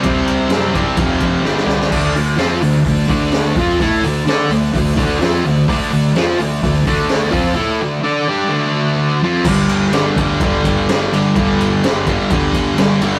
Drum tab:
CC |----------------|x---------------|----------------|----------------|
RD |x-x-x-x-x-x-----|----------------|----------------|----------------|
HH |----------------|--o-o-o-o-o-o-o-|o-o-o-o-o-o-o-o-|o-o-o-o-o-o-o-o-|
SD |----o-------oooo|----o-------o---|----o-------o---|----o-------o---|
BD |o-----o-o-o-----|o-------o-o---o-|o-------o-o-----|o-------o-o---o-|

CC |----------------|x---------------|----------------|
RD |----------------|--x-x-x-x-x-x-x-|x-x-x-x-x-x-x-x-|
HH |----------------|----------------|----------------|
SD |----------------|----o-------o---|----o-------o---|
BD |----------------|o-----o-o-o-----|o-----o-o-o-----|